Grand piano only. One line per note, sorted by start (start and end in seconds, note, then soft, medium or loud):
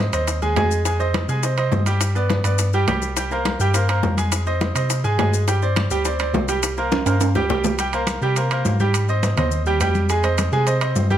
0.13 0.37 C4 medium
0.13 0.37 C5 medium
0.13 0.37 D#5 medium
0.42 0.54 G#3 medium
0.42 0.54 G#4 medium
0.42 0.54 G#5 medium
0.57 0.80 G#3 medium
0.57 0.80 G#4 medium
0.57 0.81 G#5 medium
0.85 0.97 G#3 medium
0.85 0.97 G#4 medium
0.85 0.97 G#5 medium
1.00 1.23 C4 medium
1.00 1.23 C5 medium
1.00 1.24 D#5 medium
1.29 1.41 G#3 medium
1.29 1.41 G#4 medium
1.29 1.41 G#5 medium
1.44 1.55 C4 medium
1.44 1.55 C5 medium
1.44 1.56 D#5 medium
1.58 1.81 C4 medium
1.58 1.81 C5 medium
1.58 1.82 D#5 medium
1.87 2.10 G3 medium
1.87 2.11 G4 medium
1.87 2.11 G5 medium
2.15 2.39 B3 medium
2.15 2.39 B4 medium
2.15 2.40 D5 medium
2.44 2.68 B3 medium
2.44 2.68 B4 medium
2.44 2.68 D5 medium
2.74 2.85 G3 medium
2.74 2.86 G4 medium
2.74 2.86 G5 medium
2.88 3.12 G3 medium
2.88 3.12 G4 medium
2.88 3.12 G5 medium
3.17 3.29 G3 medium
3.17 3.29 G4 medium
3.17 3.29 G5 medium
3.32 3.55 A#3 medium
3.32 3.55 A#4 medium
3.32 3.56 C5 medium
3.60 3.72 G3 medium
3.60 3.72 G4 medium
3.60 3.72 G5 medium
3.75 3.87 A#3 medium
3.75 3.87 A#4 medium
3.75 3.87 C5 medium
3.89 4.13 A#3 medium
3.89 4.13 A#4 medium
3.89 4.13 C5 medium
4.17 4.41 G#3 medium
4.17 4.41 G#4 medium
4.17 4.41 G#5 medium
4.47 4.70 C4 medium
4.47 4.70 C5 medium
4.47 4.71 D#5 medium
4.75 4.99 C4 medium
4.75 4.99 C5 medium
4.75 4.99 D#5 medium
5.04 5.16 G#3 medium
5.04 5.16 G#4 medium
5.04 5.16 G#5 medium
5.18 5.42 G#3 medium
5.18 5.42 G#4 medium
5.18 5.43 G#5 medium
5.48 5.60 G3 medium
5.48 5.60 G4 medium
5.48 5.60 G5 medium
5.62 5.86 C4 medium
5.62 5.86 C5 medium
5.62 5.86 D5 medium
5.91 6.03 G3 medium
5.91 6.03 G4 medium
5.91 6.03 G5 medium
6.06 6.17 C4 medium
6.06 6.18 C5 medium
6.06 6.18 D5 medium
6.20 6.44 C4 medium
6.20 6.44 C5 medium
6.20 6.44 D5 medium
6.49 6.72 G3 medium
6.49 6.73 G4 medium
6.49 6.73 G5 medium
6.78 7.01 A#3 medium
6.78 7.02 A#4 medium
6.78 7.02 C5 medium
7.07 7.30 A#3 medium
7.07 7.30 A#4 medium
7.07 7.31 C5 medium
7.35 7.47 G3 medium
7.35 7.47 G4 medium
7.35 7.48 G5 medium
7.50 7.74 G3 medium
7.50 7.74 G4 medium
7.50 7.74 G5 medium
7.79 7.91 G3 medium
7.79 7.91 G4 medium
7.79 7.91 G5 medium
7.94 8.17 A#3 medium
7.94 8.17 A#4 medium
7.94 8.17 C5 medium
8.22 8.34 G3 medium
8.22 8.34 G4 medium
8.22 8.34 G5 medium
8.37 8.49 A#3 medium
8.37 8.49 A#4 medium
8.37 8.49 C5 medium
8.52 8.75 A#3 medium
8.52 8.75 A#4 medium
8.52 8.75 C5 medium
8.80 9.04 G3 medium
8.80 9.04 G4 medium
8.80 9.04 G5 medium
9.09 9.32 C4 medium
9.09 9.32 C5 medium
9.09 9.33 D#5 medium
9.38 9.61 C4 medium
9.38 9.61 C5 medium
9.38 9.61 D#5 medium
9.67 9.78 G3 medium
9.67 9.78 G4 medium
9.67 9.79 G5 medium
9.81 10.05 G3 medium
9.81 10.05 G4 medium
9.81 10.05 G5 medium
10.10 10.22 G#3 medium
10.10 10.22 G#4 medium
10.10 10.22 G#5 medium
10.24 10.47 C4 medium
10.24 10.47 C5 medium
10.24 10.48 D#5 medium
10.53 10.65 G#3 medium
10.53 10.65 G#4 medium
10.53 10.65 G#5 medium
10.67 10.79 C4 medium
10.67 10.79 C5 medium
10.67 10.79 D#5 medium
10.81 11.05 C4 medium
10.81 11.05 C5 medium
10.81 11.05 D#5 medium
11.10 11.18 G3 medium
11.10 11.18 G4 medium
11.10 11.18 G5 medium